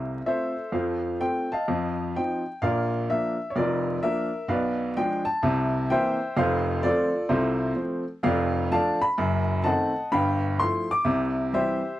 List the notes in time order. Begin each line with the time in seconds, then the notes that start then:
Already playing: C2 C3 A4 C5 F5
0.26 A3 C4 F4 A4 C5 E5
0.72 F2 F3 A4 C5 F5
1.20 A3 C4 F4 G5
1.52 D#5 F5 A5
1.68 F2 F3
2.16 F3 C4 D#4 G5
2.62 A#1 A#2 A#4 D5 F5
3.10 F3 A#3 D4 E5
3.50 C#5
3.56 F1 F2 F4 A#4 D5
4.03 F3 A#3 D4 A#4 E5
4.48 B1 B2 B4 D5 F5
4.97 F3 G#3 D4 G5
5.25 A5
5.43 C2 C3
5.90 E3 A#3 C4 C5 E5 G5
6.37 F1 F2 A4 C5 F5
6.83 F3 A3 C4 F4 A4 D5
7.29 C2 C3 F4 A4 C5
7.76 F3 A3 C4
8.23 F1 F2 A4 D5 F5
8.71 F3 A3 D4 D5 F5 A5
9.01 B5
9.18 F#1 F#2
9.64 D#3 A3 C4 D#5 F#5 A5
10.12 G1 G2 F5 G5 B5
10.59 F3 A3 E4 C6
10.91 D6
11.05 C2 C3
11.53 E3 G3 C4 G4 C5 E5